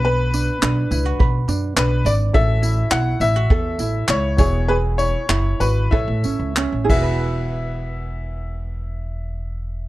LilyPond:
<<
  \new Staff \with { instrumentName = "Upright piano" } { \time 4/4 \key e \mixolydian \tempo 4 = 100 b'2 r4 b'8 d''8 | e''4 fis''8 e''4. cis''8 cis''8 | b'8 cis''4 b'8 e''4. e''8~ | e''1 | }
  \new Staff \with { instrumentName = "Upright piano" } { \time 4/4 \key e \mixolydian <d' fis' b'>2.~ <d' fis' b'>8 r8 | <cis' e' fis' a' e''>2.~ <cis' e' fis' a' e''>8 <b e' fis' gis' e''>8~ | <b e' fis' gis' e''>2 <e' a' cis''>4. <e' gis' b' fis''>8~ | <e' gis' b' fis''>1 | }
  \new Staff \with { instrumentName = "Ukulele" } { \time 4/4 \key e \mixolydian b'8 d'8 d'8 e'16 fis'16 b'8 d'8 d'8 d''8 | a'8 e'8 e'8 e'16 fis'16 a'8 e'8 e'8 gis'8 | gis'8 e'8 e'8 fis'8 a'8 cis'8 cis'8 <e' fis' gis' b'>8~ | <e' fis' gis' b'>1 | }
  \new Staff \with { instrumentName = "Upright bass" } { \clef bass \time 4/4 \key e \mixolydian b,,4 b,,8 cis,8 b,,8 fis,8 b,,8 gis,,8 | a,,4 b,,8 a,,8 e,8 a,,8 cis,8 e,,8~ | e,,4 fis,,8 gis,,8 a,,16 a,16 a,,16 cis,8 a,,16 e,,8~ | e,,1 | }
  \new DrumStaff \with { instrumentName = "Drums" } \drummode { \time 4/4 r8 tamb8 hc8 tamb8 bd8 tamb8 hc8 tamb8 | bd8 tamb8 hc8 tamb8 bd8 tamb8 hc8 <bd tamb>8 | r8 tamb8 hc8 tamb8 bd8 tamb8 hc8 <cymc bd>8 | r4 r4 r4 r4 | }
>>